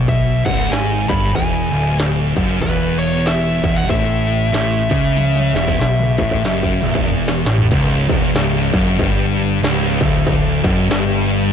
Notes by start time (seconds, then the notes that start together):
Already playing: B1 B2
0.08 E5, kick, ride
0.45 C#1 C#2 F#5, kick, ride
0.70 G#1 G#2 G#5, snare, ride
1.09 G1 G2 B5, kick, ride
1.35 E1 E2 G#5, kick, ride
1.72 D1 D2, ride
1.99 snare, ride
2.36 F#1 F#2, kick, ride
2.62 E1 E2 B4, kick, ride
2.99 C#5, ride
3.26 E5, snare, ride
3.64 E1 E2, kick, ride
3.77 F#5
3.89 A1 A2 E5, kick, ride
4.27 ride
4.53 A1 A2, snare, ride
4.90 C#2 C#3, kick, ride
5.16 high tom, ride
5.36 high tom
5.53 E1 E2, snare, ride
5.68 kick
5.80 B1 B2, snare, ride
5.99 mid tom
6.18 A1 A2, kick, ride
6.31 kick
6.44 F#1 F#2, snare, ride
6.63 kick
6.82 E1 E2, mid tom, ride
6.95 kick
7.08 floor tom, ride
7.28 snare
7.45 A1 A2, snare, ride
7.58 floor tom
7.70 C#1 C#2, kick, crash
8.08 E1 E2, kick, crash
8.35 C#1 C#2, snare, crash
8.72 F#1 F#2, kick, snare, crash
8.99 G1 G2, kick, crash
9.37 crash
9.62 C#1 C#2, snare, crash
10.01 D1 D2, kick, crash
10.27 kick, crash
10.64 F#1 F#2, kick, crash
10.90 G1 G2, snare, crash
11.28 crash